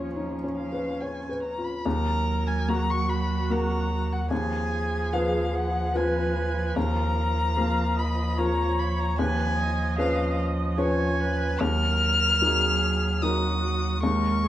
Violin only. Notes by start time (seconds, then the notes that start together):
Already playing: C#5
0.57 F5
1.01 G#5
1.43 A#5
1.64 B5
1.85 A#5
2.47 G#5
2.69 A#5
2.90 C#6
3.09 B5
3.50 A#5
4.12 F#5
4.31 G#5
5.13 F5
5.55 F#5
5.96 G#5
6.77 A#5
7.98 B5
8.39 A#5
8.79 B5
9.00 A#5
9.19 G#5
9.99 F5
10.78 G#5
11.60 F6
13.22 D#6
14.03 C#6